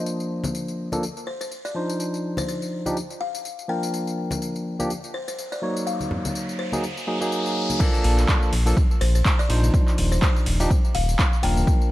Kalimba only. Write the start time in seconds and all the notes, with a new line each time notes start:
1.27 C5
1.41 C5
1.65 D5
2.38 C5
2.48 C5
3.21 F5
3.69 G5
5.14 C5
5.28 C5
5.52 D5
5.87 F5
6.59 C5
9.01 C5
9.15 C5
9.39 D5
10.12 C5
10.22 C5
10.95 F5
11.43 G5